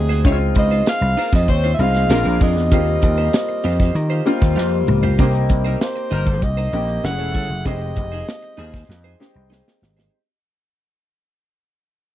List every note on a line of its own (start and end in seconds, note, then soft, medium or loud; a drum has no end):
0.00 0.25 D2 medium
0.00 0.25 G#3 medium
0.00 0.25 C4 medium
0.00 0.26 D#4 medium
0.00 0.27 F#4 medium
0.00 0.27 G4 medium
0.00 0.26 G#4 medium
0.09 0.24 D#4 medium
0.09 0.25 G#4 medium
0.09 0.25 C5 medium
0.09 snare soft
0.09 closed hi-hat medium
0.25 0.50 C#2 loud
0.25 1.12 G#3 medium
0.25 1.13 C4 medium
0.25 0.37 C#4 loud
0.25 0.45 D#4 medium
0.25 1.13 D#4 medium
0.25 0.32 E4 medium
0.25 0.40 F4 medium
0.25 0.39 C5 medium
0.25 0.37 C#5 loud
0.25 kick loud
0.25 closed hi-hat loud
0.32 1.16 F4 medium
0.40 muted clean electric guitar stroke soft
0.40 closed hi-hat soft
0.55 0.81 C#2 loud
0.55 0.68 C4 medium
0.55 0.68 C5 medium
0.55 0.86 D#5 loud
0.55 muted clean electric guitar stroke soft
0.55 kick medium
0.55 closed hi-hat medium
0.70 0.86 D#4 soft
0.70 0.86 F4 medium
0.70 0.87 C5 medium
0.70 closed hi-hat medium
0.86 1.31 F5 loud
0.86 snare loud
0.86 closed hi-hat loud
1.01 1.14 C2 medium
1.01 muted clean electric guitar stroke medium
1.17 1.30 A#3 medium
1.17 1.33 D#4 medium
1.17 1.33 F4 medium
1.17 1.30 A#4 medium
1.17 1.32 C5 loud
1.17 open hi-hat medium
1.33 1.48 F2 medium
1.33 1.47 D#4 soft
1.33 1.48 F4 medium
1.33 1.48 C5 medium
1.33 1.52 D#5 loud
1.33 kick loud
1.33 snare soft
1.33 closed hi-hat medium
1.48 1.73 D#2 loud
1.48 1.73 C4 loud
1.48 1.73 C5 loud
1.48 1.73 C#5 medium
1.48 muted clean electric guitar stroke soft
1.48 kick medium
1.48 closed hi-hat medium
1.64 1.78 D#4 medium
1.64 1.79 F4 medium
1.64 1.79 C5 medium
1.64 closed hi-hat soft
1.74 1.83 E5 medium
1.79 2.04 C2 medium
1.79 2.08 G#3 medium
1.79 2.09 C4 medium
1.79 2.10 D#4 medium
1.79 2.09 F4 medium
1.79 2.42 F5 loud
1.79 muted clean electric guitar stroke soft
1.79 closed hi-hat medium
1.94 muted clean electric guitar stroke soft
1.94 snare soft
1.94 closed hi-hat medium
2.09 2.22 A#1 loud
2.09 2.59 G#3 medium
2.09 2.35 A#3 loud
2.09 2.59 C4 medium
2.09 2.60 D4 medium
2.09 2.60 F4 medium
2.09 2.35 A#4 loud
2.09 muted clean electric guitar stroke soft
2.09 snare loud
2.09 closed hi-hat medium
2.25 2.38 A#1 medium
2.25 2.40 D4 medium
2.25 2.41 G#4 medium
2.25 2.42 A#4 medium
2.25 closed hi-hat soft
2.40 2.56 F2 loud
2.40 2.62 D4 medium
2.40 2.56 G#4 medium
2.40 2.55 A#4 medium
2.40 4.85 D#5 loud
2.40 kick loud
2.40 open hi-hat medium
2.56 2.72 E2 loud
2.56 muted clean electric guitar stroke medium
2.56 snare soft
2.56 closed hi-hat medium
2.71 2.97 D#2 loud
2.71 3.59 G3 medium
2.71 3.60 A#3 medium
2.71 3.60 C4 medium
2.71 2.92 F4 medium
2.71 3.60 F4 medium
2.71 2.87 G4 medium
2.71 2.86 C5 medium
2.71 kick loud
2.71 closed hi-hat loud
2.87 muted clean electric guitar stroke soft
2.87 closed hi-hat soft
3.02 3.28 D#2 loud
3.02 muted clean electric guitar stroke soft
3.02 kick medium
3.02 closed hi-hat medium
3.17 3.32 F4 medium
3.17 3.33 G4 medium
3.17 3.33 C5 medium
3.17 closed hi-hat medium
3.33 snare loud
3.33 closed hi-hat loud
3.49 muted clean electric guitar stroke medium
3.64 3.89 F2 medium
3.64 3.80 F4 medium
3.64 3.79 G4 medium
3.64 3.78 C5 medium
3.64 open hi-hat medium
3.80 3.94 F4 medium
3.80 3.94 G4 medium
3.80 3.95 C5 medium
3.80 kick medium
3.80 snare soft
3.80 closed hi-hat medium
3.95 4.20 D#3 loud
3.95 muted clean electric guitar stroke soft
3.95 closed hi-hat medium
4.10 4.25 F4 medium
4.10 4.25 G4 medium
4.10 4.26 C5 medium
4.10 closed hi-hat soft
4.26 4.92 G3 medium
4.26 4.92 A#3 medium
4.26 4.92 C4 medium
4.26 4.92 F4 loud
4.26 muted clean electric guitar stroke soft
4.26 closed hi-hat medium
4.41 4.57 D#2 medium
4.41 muted clean electric guitar stroke soft
4.41 kick medium
4.41 snare soft
4.41 closed hi-hat medium
4.56 4.82 F2 medium
4.56 4.77 F4 medium
4.56 4.71 G4 medium
4.56 4.70 C5 medium
4.56 snare medium
4.71 muted clean electric guitar stroke soft
4.87 5.13 C#2 loud
4.87 muted clean electric guitar stroke medium
4.87 mid tom medium
5.03 5.18 F4 medium
5.03 5.19 G4 medium
5.03 5.19 C5 medium
5.03 floor tom medium
5.18 5.44 C2 loud
5.18 6.06 A#3 medium
5.18 6.07 C4 medium
5.18 5.39 D#4 medium
5.18 6.07 D#4 medium
5.18 6.07 G4 loud
5.18 5.34 A#4 medium
5.18 5.33 C5 medium
5.18 kick loud
5.18 closed hi-hat medium
5.34 muted clean electric guitar stroke soft
5.34 closed hi-hat medium
5.49 5.75 C2 loud
5.49 muted clean electric guitar stroke soft
5.49 kick medium
5.49 closed hi-hat medium
5.65 5.78 G3 medium
5.65 5.78 D#4 medium
5.65 5.79 D#4 medium
5.65 5.78 A#4 medium
5.65 5.80 A#4 medium
5.65 5.80 C5 medium
5.65 closed hi-hat medium
5.80 6.45 C5 medium
5.80 muted clean electric guitar stroke soft
5.80 snare loud
5.96 muted clean electric guitar stroke medium
5.96 closed hi-hat medium
6.11 6.42 G1 medium
6.11 6.51 G3 loud
6.11 6.27 D#4 medium
6.11 6.51 D#4 loud
6.11 6.26 A#4 medium
6.11 6.51 A#4 loud
6.11 6.25 C5 medium
6.11 closed hi-hat medium
6.26 6.41 D#4 soft
6.26 6.41 A#4 medium
6.26 6.42 C5 medium
6.26 kick medium
6.26 closed hi-hat soft
6.42 6.67 C2 medium
6.42 7.06 D#5 loud
6.42 muted clean electric guitar stroke soft
6.42 kick medium
6.42 closed hi-hat medium
6.57 6.72 D#4 medium
6.57 6.72 A#4 medium
6.57 6.73 C5 medium
6.57 closed hi-hat medium
6.73 6.98 A#1 medium
6.73 7.04 A#3 medium
6.73 7.04 C4 medium
6.73 7.04 D#4 medium
6.73 7.04 G4 medium
6.73 muted clean electric guitar stroke soft
6.73 closed hi-hat medium
6.88 muted clean electric guitar stroke soft
6.88 closed hi-hat medium
7.03 7.19 F#1 medium
7.03 7.53 A3 medium
7.03 7.53 C#4 medium
7.03 7.54 E4 medium
7.03 7.11 F#4 medium
7.03 7.66 F#5 loud
7.03 muted clean electric guitar stroke soft
7.03 snare loud
7.11 7.57 G#4 medium
7.19 7.32 E1 medium
7.19 7.33 E4 soft
7.19 7.34 A4 medium
7.19 7.35 C#5 medium
7.19 closed hi-hat medium
7.34 7.47 G1 medium
7.34 7.55 E4 medium
7.34 7.50 A4 medium
7.34 7.49 C#5 medium
7.34 kick loud
7.34 open hi-hat medium
7.50 7.63 F#1 loud
7.50 closed hi-hat medium
7.65 7.91 F1 loud
7.65 7.72 G3 medium
7.65 8.53 C4 medium
7.65 7.86 D#4 medium
7.65 8.54 D#4 medium
7.65 8.54 G4 medium
7.65 7.81 G#4 medium
7.65 7.80 C5 loud
7.65 9.48 D#5 loud
7.65 kick loud
7.65 closed hi-hat medium
7.71 8.56 G#3 medium
7.81 muted clean electric guitar stroke soft
7.81 closed hi-hat soft
7.96 8.22 F1 loud
7.96 muted clean electric guitar stroke soft
7.96 kick medium
7.96 closed hi-hat medium
8.12 8.25 F3 medium
8.12 8.25 D#4 medium
8.12 8.26 D#4 soft
8.12 8.25 G#4 medium
8.12 8.27 G#4 medium
8.12 8.27 C5 medium
8.12 closed hi-hat soft
8.27 muted clean electric guitar stroke soft
8.27 snare loud
8.43 muted clean electric guitar stroke soft
8.43 closed hi-hat medium
8.57 8.83 D#2 medium
8.57 8.78 F3 medium
8.57 8.74 D#4 medium
8.57 8.78 D#4 loud
8.57 8.78 G#4 loud
8.57 8.73 G#4 medium
8.57 8.72 C5 medium
8.57 closed hi-hat medium
8.73 8.87 D#4 soft
8.73 8.88 G#4 medium
8.73 8.89 C5 medium
8.73 kick medium
8.73 snare soft
8.73 closed hi-hat soft
8.88 9.14 F2 loud
8.88 muted clean electric guitar stroke soft
8.88 snare medium
9.04 9.18 D#4 medium
9.04 9.19 G#4 medium
9.04 9.19 C5 medium
9.20 9.86 G#3 medium
9.20 9.86 C4 medium
9.20 9.86 D#4 medium
9.20 9.86 G4 loud
9.20 snare medium
9.35 9.61 C2 medium
9.35 muted clean electric guitar stroke soft
9.50 9.71 D#4 medium
9.50 9.66 G#4 medium
9.50 9.65 C5 medium
9.50 snare medium
9.66 muted clean electric guitar stroke soft
9.66 snare medium
9.82 10.07 G#1 loud
9.82 muted clean electric guitar stroke soft
9.82 snare medium
9.97 10.14 D#4 medium
9.97 10.14 G#4 medium
9.97 10.13 C5 medium
9.97 snare medium